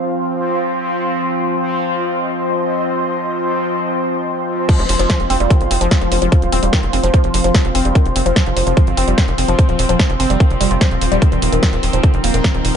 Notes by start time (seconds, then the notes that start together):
Already playing: F3 C4 F4 C5 F5 C6
1.87 D#5
4.69 F3 C4, kick, closed hi-hat, crash
4.79 F1 F3, closed hi-hat
4.89 F1 F3, open hi-hat
4.99 F1 F3 F5, closed hi-hat
5.10 F3, kick, snare, closed hi-hat
5.20 F1, closed hi-hat
5.30 F1 C4, open hi-hat
5.40 F1 G3, closed hi-hat
5.50 D#3, kick, closed hi-hat
5.61 G1, closed hi-hat
5.71 F1 C4, open hi-hat
5.81 F1 F3, closed hi-hat
5.91 kick, snare, closed hi-hat
6.01 F1 F3, closed hi-hat
6.12 F1 F3, open hi-hat
6.22 F1 F3, closed hi-hat
6.32 F3, kick, closed hi-hat
6.42 D#1, closed hi-hat
6.52 D#1 C4, open hi-hat
6.63 D#1 G3, closed hi-hat
6.73 D#3, kick, snare, closed hi-hat
6.83 F1, closed hi-hat
6.93 F1 C4, open hi-hat
7.03 F1 F3, closed hi-hat
7.14 F3, kick, closed hi-hat
7.24 F1 F3, closed hi-hat
7.34 F1 F3, open hi-hat
7.44 F1 F3, closed hi-hat
7.55 F3, kick, snare, closed hi-hat
7.65 F1, closed hi-hat
7.75 F1 C4, open hi-hat
7.85 F1 G3, closed hi-hat
7.95 D#3, kick, closed hi-hat
8.06 F1, closed hi-hat
8.16 F1 C4, open hi-hat
8.26 F1 F3, closed hi-hat
8.36 F3, kick, snare, closed hi-hat
8.46 F1 F3, closed hi-hat
8.57 F1 F3, open hi-hat
8.67 F1 F3, closed hi-hat
8.77 F3, kick, closed hi-hat
8.87 G1, closed hi-hat
8.97 F1 C4, open hi-hat
9.08 F1 G3, closed hi-hat
9.18 D#3, kick, snare, closed hi-hat
9.28 F1, closed hi-hat
9.38 F1 C4, open hi-hat
9.48 F1 F3, closed hi-hat
9.59 F3, kick, closed hi-hat
9.69 D#1 F3, closed hi-hat
9.79 D#1 F3, open hi-hat
9.89 D#1 F3, closed hi-hat
9.99 kick, snare, closed hi-hat
10.10 F1, closed hi-hat
10.20 F1 C4, open hi-hat
10.30 F1 G3, closed hi-hat
10.40 D#3, kick, closed hi-hat
10.50 F1, closed hi-hat
10.61 F1 G3, open hi-hat
10.71 F1 F4, closed hi-hat
10.81 F3, kick, snare, closed hi-hat
10.91 D#1, closed hi-hat
11.01 D#1, open hi-hat
11.12 D#1 G3, closed hi-hat
11.22 D#3 D#4, kick, closed hi-hat
11.32 D#1 D#3, closed hi-hat
11.38 A#4
11.42 D#1 D#3, open hi-hat
11.52 D#1 D#3, closed hi-hat
11.63 kick, snare, closed hi-hat
11.73 D#1, closed hi-hat
11.83 D#1 D#3, open hi-hat
11.93 D#1 F3, closed hi-hat
11.98 A#5
12.03 D3, kick, closed hi-hat
12.14 F1, closed hi-hat
12.24 D#1 A#3, open hi-hat
12.34 D#1 D#3, closed hi-hat
12.43 D#3 D#5, kick, snare, closed hi-hat
12.54 D#1 D#3, closed hi-hat
12.65 D#1 D#3, open hi-hat